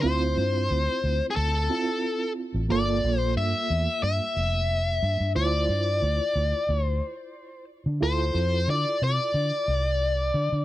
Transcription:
0.02 0.35 D2 medium
0.02 1.66 C4 medium
0.02 1.67 E4 medium
0.02 1.67 F4 medium
0.02 1.25 C5 medium
0.37 0.68 G2 medium
0.71 0.87 D2 medium
1.04 1.20 D2 medium
1.30 1.36 G#4 medium
1.36 1.68 D2 medium
1.36 2.32 A4 medium
1.70 2.70 C4 soft
1.70 2.70 E4 soft
1.70 2.69 F4 soft
2.54 2.69 A1 medium
2.69 3.01 G1 medium
2.69 5.31 A#3 medium
2.69 5.32 F4 medium
2.69 5.32 A4 medium
2.69 3.18 D5 medium
3.04 3.34 A#1 medium
3.18 3.33 C5 medium
3.37 3.53 G2 medium
3.37 4.02 E5 loud
3.70 3.86 E2 medium
4.03 4.19 G2 medium
4.03 5.32 E5 loud
4.37 4.99 F1 medium
5.03 5.19 G2 medium
5.20 5.35 G2 medium
5.35 5.67 D2 medium
5.35 7.98 E4 medium
5.35 7.98 F4 medium
5.35 7.98 C5 medium
5.35 6.83 D5 medium
5.69 6.00 G2 medium
6.02 6.19 D2 medium
6.36 6.52 D2 medium
6.69 7.00 D2 loud
6.83 7.65 C5 medium
7.86 8.01 D3 medium
8.01 8.33 D2 medium
8.01 10.63 E4 medium
8.01 10.63 F4 medium
8.01 10.64 A4 medium
8.01 8.70 C5 medium
8.35 8.66 F2 medium
8.68 8.84 D3 medium
8.68 9.03 D5 loud
9.02 9.18 C3 medium
9.02 10.65 D5 medium
9.34 9.51 D3 medium
9.68 10.30 C2 medium
10.34 10.50 D3 medium
10.52 10.65 D3 medium

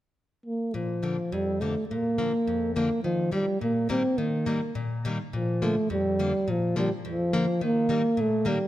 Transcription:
0.46 0.76 A#3 medium
0.74 1.17 A#2 soft
0.74 1.35 F3 medium
1.03 1.16 D3 soft
1.03 1.16 F3 soft
1.03 1.16 A#3 soft
1.32 1.75 F2 medium
1.32 1.62 G3 medium
1.60 1.74 D3 soft
1.60 1.74 F3 soft
1.60 1.87 A3 medium
1.60 1.74 A#3 soft
1.88 2.33 A#2 soft
1.88 2.71 A#3 medium
2.18 2.31 D3 soft
2.18 2.31 F3 soft
2.18 2.31 A#3 medium
2.47 2.90 F2 soft
2.75 2.89 D3 medium
2.75 2.89 F3 soft
2.75 3.02 A#3 medium
2.75 2.88 A#3 medium
3.04 3.30 D#3 soft
3.04 3.31 F3 medium
3.31 3.45 D#3 soft
3.31 3.45 G3 soft
3.31 3.59 G3 medium
3.31 3.45 A#3 soft
3.61 4.03 A#2 medium
3.61 3.88 A#3 medium
3.89 4.02 D#3 medium
3.89 4.02 G3 soft
3.89 4.02 A#3 medium
3.89 4.19 C4 medium
4.18 4.46 D#3 medium
4.18 4.75 A#3 medium
4.46 4.60 D#3 soft
4.46 4.60 G3 soft
4.46 4.59 A#3 soft
4.75 5.18 A#2 medium
5.05 5.18 D#3 medium
5.05 5.18 G3 soft
5.05 5.18 A#3 medium
5.33 5.76 A#2 medium
5.33 5.65 F3 medium
5.62 5.75 D3 soft
5.62 5.75 F3 soft
5.62 5.91 A3 medium
5.62 5.75 A#3 soft
5.90 6.32 F2 medium
5.90 6.51 G3 medium
6.19 6.32 D3 medium
6.19 6.32 F3 soft
6.19 6.32 A#3 medium
6.48 6.89 A#2 soft
6.48 6.77 F3 medium
6.76 6.89 D3 soft
6.76 6.88 F3 soft
6.76 6.91 G3 medium
6.76 6.88 A#3 medium
7.05 7.46 F2 medium
7.09 7.59 F3 medium
7.33 7.45 D3 soft
7.33 7.45 F3 soft
7.33 7.45 A#3 medium
7.61 7.88 D#3 medium
7.61 8.22 A#3 medium
7.89 8.01 D#3 soft
7.89 8.02 G3 soft
7.89 8.02 A#3 medium
8.17 8.59 A#2 medium
8.17 8.49 A3 medium
8.45 8.57 D#3 medium
8.45 8.57 G3 soft
8.45 8.68 G3 medium
8.45 8.58 A#3 medium

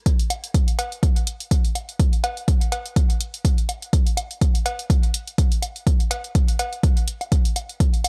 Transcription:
0.06 kick loud
0.06 closed hi-hat medium
0.19 closed hi-hat soft
0.30 closed hi-hat medium
0.30 low woodblock medium
0.44 closed hi-hat soft
0.54 kick loud
0.54 closed hi-hat medium
0.68 closed hi-hat soft
0.79 closed hi-hat medium
0.79 cowbell medium
0.92 closed hi-hat soft
1.03 kick loud
1.03 closed hi-hat medium
1.16 closed hi-hat soft
1.27 closed hi-hat medium
1.40 closed hi-hat soft
1.51 kick loud
1.51 closed hi-hat medium
1.65 closed hi-hat soft
1.75 closed hi-hat medium
1.75 low woodblock medium
1.89 closed hi-hat soft
2.00 kick loud
2.00 closed hi-hat medium
2.13 closed hi-hat soft
2.24 closed hi-hat medium
2.24 cowbell medium
2.24 low woodblock medium
2.37 closed hi-hat soft
2.48 kick loud
2.48 closed hi-hat medium
2.61 closed hi-hat soft
2.72 closed hi-hat medium
2.72 cowbell medium
2.86 closed hi-hat soft
2.96 kick loud
2.96 closed hi-hat medium
3.10 closed hi-hat soft
3.21 closed hi-hat medium
3.34 closed hi-hat soft
3.45 kick loud
3.45 closed hi-hat medium
3.58 closed hi-hat soft
3.69 closed hi-hat medium
3.69 low woodblock medium
3.82 closed hi-hat soft
3.93 kick loud
3.93 closed hi-hat medium
4.07 closed hi-hat soft
4.17 closed hi-hat medium
4.17 low woodblock medium
4.31 closed hi-hat soft
4.41 kick loud
4.41 closed hi-hat medium
4.55 closed hi-hat soft
4.66 closed hi-hat medium
4.66 cowbell medium
4.79 closed hi-hat soft
4.90 kick loud
4.90 closed hi-hat medium
5.03 closed hi-hat soft
5.14 closed hi-hat medium
5.27 closed hi-hat soft
5.38 kick loud
5.38 closed hi-hat medium
5.52 closed hi-hat soft
5.62 closed hi-hat medium
5.62 low woodblock medium
5.76 closed hi-hat soft
5.87 kick loud
5.87 closed hi-hat medium
6.00 closed hi-hat soft
6.11 closed hi-hat medium
6.11 cowbell medium
6.11 low woodblock medium
6.24 closed hi-hat soft
6.35 kick loud
6.35 closed hi-hat medium
6.48 closed hi-hat soft
6.59 closed hi-hat medium
6.59 cowbell medium
6.73 closed hi-hat soft
6.83 kick loud
6.83 closed hi-hat medium
6.97 closed hi-hat soft
7.08 closed hi-hat medium
7.21 closed hi-hat soft
7.21 low woodblock soft
7.32 kick loud
7.32 closed hi-hat medium
7.45 closed hi-hat soft
7.56 closed hi-hat medium
7.56 low woodblock medium
7.69 closed hi-hat soft
7.80 kick loud
7.80 closed hi-hat medium
7.94 closed hi-hat soft
8.04 closed hi-hat medium
8.04 low woodblock medium

